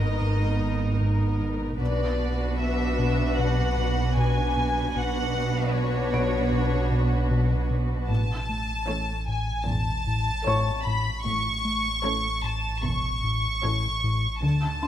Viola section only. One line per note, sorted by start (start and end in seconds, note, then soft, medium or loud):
0.00 1.76 B3 soft
0.00 1.76 D#4 soft
1.80 4.91 B3 soft
1.80 4.92 D4 soft
4.96 8.06 B3 soft
4.96 8.05 D4 soft
8.88 9.48 E3 soft
8.88 9.48 C#4 soft
10.46 11.06 E3 soft
10.46 11.06 C#4 soft
12.04 12.64 E3 soft
12.04 12.64 C#4 soft
13.64 14.23 E3 soft
13.64 14.23 C#4 soft